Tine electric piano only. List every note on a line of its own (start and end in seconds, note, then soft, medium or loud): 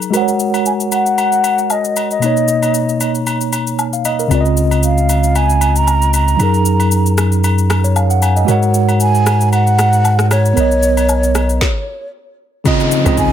0.00 0.15 F#3 medium
0.00 0.15 D#4 medium
0.00 0.10 G#4 medium
0.00 0.11 A#4 medium
0.10 2.17 G#3 medium
0.10 2.17 F#4 medium
0.10 2.18 A#4 medium
0.15 0.21 C5 medium
0.15 2.20 F#5 medium
0.21 2.22 C#5 medium
2.19 4.25 B2 medium
2.19 4.26 A#3 medium
2.24 4.28 D#4 medium
2.24 3.52 C#5 medium
3.93 4.04 F5 medium
4.05 4.19 D#5 medium
4.19 4.44 A#4 medium
4.28 6.34 C#3 medium
4.28 6.35 C4 medium
4.32 6.36 F4 medium
4.32 4.40 D5 medium
4.41 6.40 D#5 medium
6.36 8.43 F#3 medium
6.36 8.44 D#4 medium
6.41 8.45 G#4 medium
6.41 8.46 A#4 medium
7.84 7.95 C#5 medium
7.96 8.10 F5 medium
8.10 8.22 F#5 medium
8.22 8.36 G#5 medium
8.36 8.61 D#5 medium
8.45 10.51 G#3 medium
8.45 10.52 F#4 medium
8.45 10.53 A#4 medium
8.50 10.54 C#5 medium
8.50 10.55 F#5 medium
10.54 11.57 B3 medium
10.54 11.59 A#4 medium
10.58 11.60 C#5 medium
10.58 11.61 D#5 medium
12.64 12.97 C#3 medium
12.64 12.97 C4 medium
12.64 12.98 F4 medium
12.64 12.98 D#5 loud
13.04 13.32 C#3 medium
13.04 13.32 C4 medium
13.04 13.32 F4 medium
13.04 13.32 D#5 medium